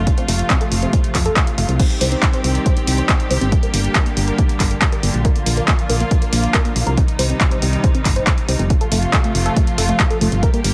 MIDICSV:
0, 0, Header, 1, 5, 480
1, 0, Start_track
1, 0, Tempo, 431655
1, 77, Time_signature, 4, 2, 24, 8
1, 11940, End_track
2, 0, Start_track
2, 0, Title_t, "Synth arpeggio sound"
2, 0, Program_c, 0, 84
2, 197, Note_on_c, 0, 60, 75
2, 273, Note_off_c, 0, 60, 0
2, 317, Note_on_c, 0, 57, 75
2, 393, Note_off_c, 0, 57, 0
2, 557, Note_on_c, 0, 60, 82
2, 633, Note_off_c, 0, 60, 0
2, 677, Note_on_c, 0, 57, 74
2, 753, Note_off_c, 0, 57, 0
2, 918, Note_on_c, 0, 60, 76
2, 993, Note_off_c, 0, 60, 0
2, 1037, Note_on_c, 0, 57, 85
2, 1113, Note_off_c, 0, 57, 0
2, 1278, Note_on_c, 0, 69, 75
2, 1354, Note_off_c, 0, 69, 0
2, 1397, Note_on_c, 0, 69, 103
2, 1511, Note_off_c, 0, 69, 0
2, 1638, Note_on_c, 0, 65, 73
2, 1713, Note_off_c, 0, 65, 0
2, 1757, Note_on_c, 0, 77, 77
2, 1803, Note_off_c, 0, 77, 0
2, 1997, Note_on_c, 0, 60, 83
2, 2073, Note_off_c, 0, 60, 0
2, 2237, Note_on_c, 0, 72, 73
2, 2313, Note_off_c, 0, 72, 0
2, 2357, Note_on_c, 0, 60, 76
2, 2433, Note_off_c, 0, 60, 0
2, 2598, Note_on_c, 0, 72, 75
2, 2674, Note_off_c, 0, 72, 0
2, 2718, Note_on_c, 0, 60, 71
2, 2794, Note_off_c, 0, 60, 0
2, 2958, Note_on_c, 0, 72, 82
2, 3034, Note_off_c, 0, 72, 0
2, 3078, Note_on_c, 0, 60, 75
2, 3154, Note_off_c, 0, 60, 0
2, 3318, Note_on_c, 0, 72, 76
2, 3394, Note_off_c, 0, 72, 0
2, 3438, Note_on_c, 0, 60, 84
2, 3513, Note_off_c, 0, 60, 0
2, 3678, Note_on_c, 0, 72, 77
2, 3754, Note_off_c, 0, 72, 0
2, 3798, Note_on_c, 0, 60, 75
2, 3874, Note_off_c, 0, 60, 0
2, 4038, Note_on_c, 0, 70, 78
2, 4114, Note_off_c, 0, 70, 0
2, 4158, Note_on_c, 0, 58, 74
2, 4233, Note_off_c, 0, 58, 0
2, 4397, Note_on_c, 0, 70, 80
2, 4473, Note_off_c, 0, 70, 0
2, 4518, Note_on_c, 0, 58, 76
2, 4594, Note_off_c, 0, 58, 0
2, 4757, Note_on_c, 0, 70, 76
2, 4833, Note_off_c, 0, 70, 0
2, 4877, Note_on_c, 0, 58, 83
2, 4953, Note_off_c, 0, 58, 0
2, 5117, Note_on_c, 0, 70, 75
2, 5193, Note_off_c, 0, 70, 0
2, 5236, Note_on_c, 0, 58, 76
2, 5313, Note_off_c, 0, 58, 0
2, 5476, Note_on_c, 0, 70, 75
2, 5553, Note_off_c, 0, 70, 0
2, 5597, Note_on_c, 0, 58, 78
2, 5673, Note_off_c, 0, 58, 0
2, 5837, Note_on_c, 0, 70, 81
2, 5913, Note_off_c, 0, 70, 0
2, 5957, Note_on_c, 0, 58, 77
2, 6033, Note_off_c, 0, 58, 0
2, 6197, Note_on_c, 0, 70, 75
2, 6273, Note_off_c, 0, 70, 0
2, 6316, Note_on_c, 0, 58, 80
2, 6393, Note_off_c, 0, 58, 0
2, 6557, Note_on_c, 0, 70, 74
2, 6633, Note_off_c, 0, 70, 0
2, 6676, Note_on_c, 0, 58, 77
2, 6753, Note_off_c, 0, 58, 0
2, 6917, Note_on_c, 0, 70, 74
2, 6993, Note_off_c, 0, 70, 0
2, 7037, Note_on_c, 0, 58, 75
2, 7113, Note_off_c, 0, 58, 0
2, 7276, Note_on_c, 0, 70, 84
2, 7353, Note_off_c, 0, 70, 0
2, 7396, Note_on_c, 0, 58, 77
2, 7473, Note_off_c, 0, 58, 0
2, 7636, Note_on_c, 0, 70, 75
2, 7713, Note_off_c, 0, 70, 0
2, 7756, Note_on_c, 0, 60, 83
2, 7833, Note_off_c, 0, 60, 0
2, 7995, Note_on_c, 0, 72, 76
2, 8072, Note_off_c, 0, 72, 0
2, 8115, Note_on_c, 0, 60, 76
2, 8192, Note_off_c, 0, 60, 0
2, 8355, Note_on_c, 0, 72, 76
2, 8432, Note_off_c, 0, 72, 0
2, 8474, Note_on_c, 0, 60, 74
2, 8552, Note_off_c, 0, 60, 0
2, 8715, Note_on_c, 0, 72, 82
2, 8792, Note_off_c, 0, 72, 0
2, 8836, Note_on_c, 0, 60, 73
2, 8913, Note_off_c, 0, 60, 0
2, 9075, Note_on_c, 0, 72, 77
2, 9152, Note_off_c, 0, 72, 0
2, 9197, Note_on_c, 0, 60, 83
2, 9242, Note_off_c, 0, 60, 0
2, 9435, Note_on_c, 0, 60, 77
2, 9512, Note_off_c, 0, 60, 0
2, 9556, Note_on_c, 0, 60, 76
2, 9602, Note_off_c, 0, 60, 0
2, 9797, Note_on_c, 0, 69, 76
2, 9873, Note_off_c, 0, 69, 0
2, 9916, Note_on_c, 0, 57, 77
2, 9993, Note_off_c, 0, 57, 0
2, 10156, Note_on_c, 0, 69, 84
2, 10233, Note_off_c, 0, 69, 0
2, 10277, Note_on_c, 0, 57, 75
2, 10353, Note_off_c, 0, 57, 0
2, 10517, Note_on_c, 0, 69, 76
2, 10593, Note_off_c, 0, 69, 0
2, 10637, Note_on_c, 0, 57, 82
2, 10713, Note_off_c, 0, 57, 0
2, 10877, Note_on_c, 0, 69, 78
2, 10953, Note_off_c, 0, 69, 0
2, 10997, Note_on_c, 0, 57, 76
2, 11073, Note_off_c, 0, 57, 0
2, 11236, Note_on_c, 0, 69, 77
2, 11313, Note_off_c, 0, 69, 0
2, 11357, Note_on_c, 0, 57, 78
2, 11433, Note_off_c, 0, 57, 0
2, 11597, Note_on_c, 0, 70, 83
2, 11673, Note_off_c, 0, 70, 0
2, 11717, Note_on_c, 0, 58, 76
2, 11793, Note_off_c, 0, 58, 0
2, 11940, End_track
3, 0, Start_track
3, 0, Title_t, "String section"
3, 0, Program_c, 1, 48
3, 0, Note_on_c, 1, 57, 69
3, 0, Note_on_c, 1, 65, 82
3, 76, Note_on_c, 1, 53, 70
3, 77, Note_on_c, 1, 48, 73
3, 1960, Note_off_c, 1, 57, 0
3, 1960, Note_off_c, 1, 65, 0
3, 1977, Note_off_c, 1, 53, 0
3, 1978, Note_off_c, 1, 48, 0
3, 1996, Note_on_c, 1, 51, 76
3, 1996, Note_on_c, 1, 60, 67
3, 1996, Note_on_c, 1, 67, 82
3, 1997, Note_on_c, 1, 55, 69
3, 3897, Note_off_c, 1, 51, 0
3, 3897, Note_off_c, 1, 60, 0
3, 3917, Note_on_c, 1, 50, 75
3, 3917, Note_on_c, 1, 58, 69
3, 5798, Note_off_c, 1, 55, 0
3, 5798, Note_off_c, 1, 67, 0
3, 5818, Note_off_c, 1, 58, 0
3, 5835, Note_on_c, 1, 53, 68
3, 5835, Note_on_c, 1, 65, 86
3, 5836, Note_on_c, 1, 58, 71
3, 7718, Note_off_c, 1, 50, 0
3, 7737, Note_off_c, 1, 53, 0
3, 7737, Note_off_c, 1, 58, 0
3, 7737, Note_off_c, 1, 65, 0
3, 7755, Note_on_c, 1, 48, 75
3, 7756, Note_on_c, 1, 51, 69
3, 7757, Note_on_c, 1, 55, 70
3, 7757, Note_on_c, 1, 63, 85
3, 9657, Note_off_c, 1, 48, 0
3, 9657, Note_off_c, 1, 51, 0
3, 9657, Note_off_c, 1, 55, 0
3, 9658, Note_off_c, 1, 63, 0
3, 9674, Note_on_c, 1, 48, 76
3, 9675, Note_on_c, 1, 53, 70
3, 9675, Note_on_c, 1, 57, 69
3, 9675, Note_on_c, 1, 65, 83
3, 11576, Note_off_c, 1, 48, 0
3, 11576, Note_off_c, 1, 57, 0
3, 11576, Note_off_c, 1, 65, 0
3, 11577, Note_off_c, 1, 53, 0
3, 11596, Note_on_c, 1, 58, 68
3, 11597, Note_on_c, 1, 50, 76
3, 11597, Note_on_c, 1, 55, 70
3, 11597, Note_on_c, 1, 67, 82
3, 11940, Note_off_c, 1, 50, 0
3, 11940, Note_off_c, 1, 55, 0
3, 11940, Note_off_c, 1, 58, 0
3, 11940, Note_off_c, 1, 67, 0
3, 11940, End_track
4, 0, Start_track
4, 0, Title_t, "FM bass"
4, 0, Program_c, 2, 39
4, 0, Note_on_c, 2, 29, 91
4, 115, Note_off_c, 2, 29, 0
4, 317, Note_on_c, 2, 29, 93
4, 475, Note_off_c, 2, 29, 0
4, 797, Note_on_c, 2, 29, 85
4, 955, Note_off_c, 2, 29, 0
4, 1276, Note_on_c, 2, 41, 94
4, 1435, Note_off_c, 2, 41, 0
4, 1756, Note_on_c, 2, 29, 91
4, 1835, Note_off_c, 2, 29, 0
4, 1876, Note_on_c, 2, 36, 97
4, 2034, Note_off_c, 2, 36, 0
4, 2236, Note_on_c, 2, 36, 94
4, 2395, Note_off_c, 2, 36, 0
4, 2716, Note_on_c, 2, 36, 84
4, 2874, Note_off_c, 2, 36, 0
4, 3195, Note_on_c, 2, 36, 85
4, 3354, Note_off_c, 2, 36, 0
4, 3676, Note_on_c, 2, 36, 91
4, 3755, Note_off_c, 2, 36, 0
4, 3795, Note_on_c, 2, 31, 91
4, 3954, Note_off_c, 2, 31, 0
4, 4156, Note_on_c, 2, 31, 93
4, 4315, Note_off_c, 2, 31, 0
4, 4636, Note_on_c, 2, 31, 84
4, 4795, Note_off_c, 2, 31, 0
4, 5116, Note_on_c, 2, 31, 85
4, 5275, Note_off_c, 2, 31, 0
4, 5595, Note_on_c, 2, 31, 92
4, 5675, Note_off_c, 2, 31, 0
4, 5715, Note_on_c, 2, 34, 90
4, 5874, Note_off_c, 2, 34, 0
4, 6076, Note_on_c, 2, 34, 96
4, 6235, Note_off_c, 2, 34, 0
4, 6555, Note_on_c, 2, 34, 86
4, 6714, Note_off_c, 2, 34, 0
4, 7035, Note_on_c, 2, 34, 85
4, 7194, Note_off_c, 2, 34, 0
4, 7515, Note_on_c, 2, 34, 93
4, 7595, Note_off_c, 2, 34, 0
4, 7635, Note_on_c, 2, 36, 90
4, 7794, Note_off_c, 2, 36, 0
4, 7995, Note_on_c, 2, 36, 95
4, 8154, Note_off_c, 2, 36, 0
4, 8475, Note_on_c, 2, 36, 83
4, 8634, Note_off_c, 2, 36, 0
4, 8956, Note_on_c, 2, 31, 99
4, 9115, Note_off_c, 2, 31, 0
4, 9435, Note_on_c, 2, 36, 91
4, 9515, Note_off_c, 2, 36, 0
4, 9556, Note_on_c, 2, 29, 98
4, 9714, Note_off_c, 2, 29, 0
4, 9916, Note_on_c, 2, 29, 98
4, 10075, Note_off_c, 2, 29, 0
4, 10396, Note_on_c, 2, 29, 84
4, 10555, Note_off_c, 2, 29, 0
4, 10877, Note_on_c, 2, 29, 86
4, 11035, Note_off_c, 2, 29, 0
4, 11357, Note_on_c, 2, 29, 90
4, 11436, Note_off_c, 2, 29, 0
4, 11476, Note_on_c, 2, 31, 92
4, 11635, Note_off_c, 2, 31, 0
4, 11837, Note_on_c, 2, 31, 97
4, 11940, Note_off_c, 2, 31, 0
4, 11940, End_track
5, 0, Start_track
5, 0, Title_t, "Drums"
5, 76, Note_on_c, 9, 36, 111
5, 76, Note_on_c, 9, 42, 80
5, 187, Note_off_c, 9, 36, 0
5, 188, Note_off_c, 9, 42, 0
5, 196, Note_on_c, 9, 42, 53
5, 307, Note_off_c, 9, 42, 0
5, 317, Note_on_c, 9, 46, 95
5, 428, Note_off_c, 9, 46, 0
5, 437, Note_on_c, 9, 42, 51
5, 548, Note_off_c, 9, 42, 0
5, 556, Note_on_c, 9, 36, 109
5, 556, Note_on_c, 9, 39, 115
5, 556, Note_on_c, 9, 42, 80
5, 667, Note_off_c, 9, 36, 0
5, 667, Note_off_c, 9, 39, 0
5, 667, Note_off_c, 9, 42, 0
5, 677, Note_on_c, 9, 42, 51
5, 788, Note_off_c, 9, 42, 0
5, 796, Note_on_c, 9, 46, 85
5, 908, Note_off_c, 9, 46, 0
5, 916, Note_on_c, 9, 42, 54
5, 1027, Note_off_c, 9, 42, 0
5, 1036, Note_on_c, 9, 36, 109
5, 1036, Note_on_c, 9, 42, 82
5, 1147, Note_off_c, 9, 36, 0
5, 1147, Note_off_c, 9, 42, 0
5, 1156, Note_on_c, 9, 42, 52
5, 1268, Note_off_c, 9, 42, 0
5, 1276, Note_on_c, 9, 36, 57
5, 1276, Note_on_c, 9, 39, 58
5, 1276, Note_on_c, 9, 46, 96
5, 1387, Note_off_c, 9, 36, 0
5, 1387, Note_off_c, 9, 39, 0
5, 1387, Note_off_c, 9, 46, 0
5, 1397, Note_on_c, 9, 42, 53
5, 1508, Note_off_c, 9, 42, 0
5, 1516, Note_on_c, 9, 36, 111
5, 1517, Note_on_c, 9, 39, 115
5, 1517, Note_on_c, 9, 42, 79
5, 1627, Note_off_c, 9, 36, 0
5, 1628, Note_off_c, 9, 39, 0
5, 1628, Note_off_c, 9, 42, 0
5, 1637, Note_on_c, 9, 42, 53
5, 1748, Note_off_c, 9, 42, 0
5, 1756, Note_on_c, 9, 46, 86
5, 1867, Note_off_c, 9, 46, 0
5, 1876, Note_on_c, 9, 42, 55
5, 1987, Note_off_c, 9, 42, 0
5, 1996, Note_on_c, 9, 36, 116
5, 1997, Note_on_c, 9, 42, 78
5, 1997, Note_on_c, 9, 49, 72
5, 2107, Note_off_c, 9, 36, 0
5, 2108, Note_off_c, 9, 42, 0
5, 2108, Note_off_c, 9, 49, 0
5, 2116, Note_on_c, 9, 42, 51
5, 2227, Note_off_c, 9, 42, 0
5, 2236, Note_on_c, 9, 46, 99
5, 2347, Note_off_c, 9, 46, 0
5, 2356, Note_on_c, 9, 42, 52
5, 2467, Note_off_c, 9, 42, 0
5, 2476, Note_on_c, 9, 36, 115
5, 2476, Note_on_c, 9, 39, 119
5, 2476, Note_on_c, 9, 42, 78
5, 2587, Note_off_c, 9, 36, 0
5, 2587, Note_off_c, 9, 39, 0
5, 2587, Note_off_c, 9, 42, 0
5, 2596, Note_on_c, 9, 42, 52
5, 2707, Note_off_c, 9, 42, 0
5, 2716, Note_on_c, 9, 46, 88
5, 2827, Note_off_c, 9, 46, 0
5, 2836, Note_on_c, 9, 42, 53
5, 2948, Note_off_c, 9, 42, 0
5, 2956, Note_on_c, 9, 36, 112
5, 2956, Note_on_c, 9, 42, 81
5, 3067, Note_off_c, 9, 36, 0
5, 3068, Note_off_c, 9, 42, 0
5, 3076, Note_on_c, 9, 42, 53
5, 3187, Note_off_c, 9, 42, 0
5, 3196, Note_on_c, 9, 46, 102
5, 3308, Note_off_c, 9, 46, 0
5, 3317, Note_on_c, 9, 42, 53
5, 3428, Note_off_c, 9, 42, 0
5, 3436, Note_on_c, 9, 36, 118
5, 3437, Note_on_c, 9, 39, 118
5, 3437, Note_on_c, 9, 42, 80
5, 3547, Note_off_c, 9, 36, 0
5, 3548, Note_off_c, 9, 39, 0
5, 3548, Note_off_c, 9, 42, 0
5, 3557, Note_on_c, 9, 42, 53
5, 3668, Note_off_c, 9, 42, 0
5, 3676, Note_on_c, 9, 46, 89
5, 3787, Note_off_c, 9, 46, 0
5, 3796, Note_on_c, 9, 42, 56
5, 3907, Note_off_c, 9, 42, 0
5, 3916, Note_on_c, 9, 36, 120
5, 3916, Note_on_c, 9, 42, 75
5, 4027, Note_off_c, 9, 36, 0
5, 4027, Note_off_c, 9, 42, 0
5, 4036, Note_on_c, 9, 42, 53
5, 4147, Note_off_c, 9, 42, 0
5, 4155, Note_on_c, 9, 46, 104
5, 4267, Note_off_c, 9, 46, 0
5, 4276, Note_on_c, 9, 42, 51
5, 4387, Note_off_c, 9, 42, 0
5, 4396, Note_on_c, 9, 36, 119
5, 4396, Note_on_c, 9, 39, 119
5, 4396, Note_on_c, 9, 42, 78
5, 4507, Note_off_c, 9, 36, 0
5, 4507, Note_off_c, 9, 39, 0
5, 4507, Note_off_c, 9, 42, 0
5, 4516, Note_on_c, 9, 42, 52
5, 4627, Note_off_c, 9, 42, 0
5, 4636, Note_on_c, 9, 46, 92
5, 4747, Note_off_c, 9, 46, 0
5, 4756, Note_on_c, 9, 42, 52
5, 4867, Note_off_c, 9, 42, 0
5, 4876, Note_on_c, 9, 36, 122
5, 4876, Note_on_c, 9, 42, 79
5, 4987, Note_off_c, 9, 36, 0
5, 4987, Note_off_c, 9, 42, 0
5, 4996, Note_on_c, 9, 42, 52
5, 5107, Note_off_c, 9, 42, 0
5, 5116, Note_on_c, 9, 36, 61
5, 5116, Note_on_c, 9, 39, 60
5, 5116, Note_on_c, 9, 46, 106
5, 5227, Note_off_c, 9, 36, 0
5, 5227, Note_off_c, 9, 39, 0
5, 5227, Note_off_c, 9, 46, 0
5, 5236, Note_on_c, 9, 42, 50
5, 5347, Note_off_c, 9, 42, 0
5, 5355, Note_on_c, 9, 39, 118
5, 5355, Note_on_c, 9, 42, 76
5, 5356, Note_on_c, 9, 36, 121
5, 5467, Note_off_c, 9, 36, 0
5, 5467, Note_off_c, 9, 39, 0
5, 5467, Note_off_c, 9, 42, 0
5, 5476, Note_on_c, 9, 42, 52
5, 5587, Note_off_c, 9, 42, 0
5, 5596, Note_on_c, 9, 46, 96
5, 5707, Note_off_c, 9, 46, 0
5, 5716, Note_on_c, 9, 42, 54
5, 5827, Note_off_c, 9, 42, 0
5, 5836, Note_on_c, 9, 36, 124
5, 5836, Note_on_c, 9, 42, 75
5, 5947, Note_off_c, 9, 36, 0
5, 5947, Note_off_c, 9, 42, 0
5, 5956, Note_on_c, 9, 42, 51
5, 6067, Note_off_c, 9, 42, 0
5, 6076, Note_on_c, 9, 46, 106
5, 6187, Note_off_c, 9, 46, 0
5, 6196, Note_on_c, 9, 42, 48
5, 6307, Note_off_c, 9, 42, 0
5, 6316, Note_on_c, 9, 36, 123
5, 6316, Note_on_c, 9, 39, 118
5, 6316, Note_on_c, 9, 42, 73
5, 6427, Note_off_c, 9, 36, 0
5, 6427, Note_off_c, 9, 39, 0
5, 6427, Note_off_c, 9, 42, 0
5, 6436, Note_on_c, 9, 42, 48
5, 6547, Note_off_c, 9, 42, 0
5, 6556, Note_on_c, 9, 46, 91
5, 6667, Note_off_c, 9, 46, 0
5, 6676, Note_on_c, 9, 42, 50
5, 6787, Note_off_c, 9, 42, 0
5, 6795, Note_on_c, 9, 42, 77
5, 6796, Note_on_c, 9, 36, 119
5, 6907, Note_off_c, 9, 36, 0
5, 6907, Note_off_c, 9, 42, 0
5, 6915, Note_on_c, 9, 42, 51
5, 7027, Note_off_c, 9, 42, 0
5, 7035, Note_on_c, 9, 46, 106
5, 7146, Note_off_c, 9, 46, 0
5, 7156, Note_on_c, 9, 42, 51
5, 7267, Note_off_c, 9, 42, 0
5, 7276, Note_on_c, 9, 36, 123
5, 7276, Note_on_c, 9, 39, 120
5, 7276, Note_on_c, 9, 42, 74
5, 7387, Note_off_c, 9, 36, 0
5, 7387, Note_off_c, 9, 39, 0
5, 7387, Note_off_c, 9, 42, 0
5, 7395, Note_on_c, 9, 42, 51
5, 7507, Note_off_c, 9, 42, 0
5, 7516, Note_on_c, 9, 46, 94
5, 7627, Note_off_c, 9, 46, 0
5, 7636, Note_on_c, 9, 42, 52
5, 7747, Note_off_c, 9, 42, 0
5, 7756, Note_on_c, 9, 36, 122
5, 7756, Note_on_c, 9, 42, 72
5, 7867, Note_off_c, 9, 36, 0
5, 7867, Note_off_c, 9, 42, 0
5, 7876, Note_on_c, 9, 42, 49
5, 7987, Note_off_c, 9, 42, 0
5, 7996, Note_on_c, 9, 46, 104
5, 8107, Note_off_c, 9, 46, 0
5, 8116, Note_on_c, 9, 42, 47
5, 8227, Note_off_c, 9, 42, 0
5, 8236, Note_on_c, 9, 36, 121
5, 8236, Note_on_c, 9, 39, 114
5, 8236, Note_on_c, 9, 42, 74
5, 8347, Note_off_c, 9, 36, 0
5, 8347, Note_off_c, 9, 39, 0
5, 8347, Note_off_c, 9, 42, 0
5, 8356, Note_on_c, 9, 42, 50
5, 8467, Note_off_c, 9, 42, 0
5, 8475, Note_on_c, 9, 46, 92
5, 8586, Note_off_c, 9, 46, 0
5, 8596, Note_on_c, 9, 42, 48
5, 8707, Note_off_c, 9, 42, 0
5, 8716, Note_on_c, 9, 36, 123
5, 8716, Note_on_c, 9, 42, 73
5, 8827, Note_off_c, 9, 36, 0
5, 8827, Note_off_c, 9, 42, 0
5, 8836, Note_on_c, 9, 42, 50
5, 8947, Note_off_c, 9, 42, 0
5, 8956, Note_on_c, 9, 36, 62
5, 8956, Note_on_c, 9, 39, 58
5, 8956, Note_on_c, 9, 46, 106
5, 9067, Note_off_c, 9, 36, 0
5, 9067, Note_off_c, 9, 39, 0
5, 9067, Note_off_c, 9, 46, 0
5, 9075, Note_on_c, 9, 42, 50
5, 9187, Note_off_c, 9, 42, 0
5, 9195, Note_on_c, 9, 39, 116
5, 9195, Note_on_c, 9, 42, 72
5, 9196, Note_on_c, 9, 36, 119
5, 9307, Note_off_c, 9, 36, 0
5, 9307, Note_off_c, 9, 39, 0
5, 9307, Note_off_c, 9, 42, 0
5, 9316, Note_on_c, 9, 42, 49
5, 9427, Note_off_c, 9, 42, 0
5, 9436, Note_on_c, 9, 46, 95
5, 9547, Note_off_c, 9, 46, 0
5, 9556, Note_on_c, 9, 42, 50
5, 9667, Note_off_c, 9, 42, 0
5, 9676, Note_on_c, 9, 36, 115
5, 9676, Note_on_c, 9, 42, 72
5, 9787, Note_off_c, 9, 36, 0
5, 9787, Note_off_c, 9, 42, 0
5, 9796, Note_on_c, 9, 42, 50
5, 9907, Note_off_c, 9, 42, 0
5, 9916, Note_on_c, 9, 46, 100
5, 10027, Note_off_c, 9, 46, 0
5, 10037, Note_on_c, 9, 42, 48
5, 10148, Note_off_c, 9, 42, 0
5, 10156, Note_on_c, 9, 36, 115
5, 10156, Note_on_c, 9, 39, 111
5, 10156, Note_on_c, 9, 42, 73
5, 10267, Note_off_c, 9, 36, 0
5, 10268, Note_off_c, 9, 39, 0
5, 10268, Note_off_c, 9, 42, 0
5, 10277, Note_on_c, 9, 42, 48
5, 10388, Note_off_c, 9, 42, 0
5, 10397, Note_on_c, 9, 46, 89
5, 10508, Note_off_c, 9, 46, 0
5, 10516, Note_on_c, 9, 42, 50
5, 10627, Note_off_c, 9, 42, 0
5, 10636, Note_on_c, 9, 36, 113
5, 10636, Note_on_c, 9, 42, 76
5, 10747, Note_off_c, 9, 36, 0
5, 10748, Note_off_c, 9, 42, 0
5, 10756, Note_on_c, 9, 42, 50
5, 10867, Note_off_c, 9, 42, 0
5, 10876, Note_on_c, 9, 46, 101
5, 10988, Note_off_c, 9, 46, 0
5, 10997, Note_on_c, 9, 42, 50
5, 11108, Note_off_c, 9, 42, 0
5, 11116, Note_on_c, 9, 36, 115
5, 11117, Note_on_c, 9, 39, 109
5, 11117, Note_on_c, 9, 42, 72
5, 11227, Note_off_c, 9, 36, 0
5, 11228, Note_off_c, 9, 39, 0
5, 11228, Note_off_c, 9, 42, 0
5, 11237, Note_on_c, 9, 42, 50
5, 11348, Note_off_c, 9, 42, 0
5, 11357, Note_on_c, 9, 46, 90
5, 11468, Note_off_c, 9, 46, 0
5, 11477, Note_on_c, 9, 42, 52
5, 11588, Note_off_c, 9, 42, 0
5, 11596, Note_on_c, 9, 36, 113
5, 11597, Note_on_c, 9, 42, 75
5, 11707, Note_off_c, 9, 36, 0
5, 11708, Note_off_c, 9, 42, 0
5, 11717, Note_on_c, 9, 42, 51
5, 11828, Note_off_c, 9, 42, 0
5, 11837, Note_on_c, 9, 46, 97
5, 11940, Note_off_c, 9, 46, 0
5, 11940, End_track
0, 0, End_of_file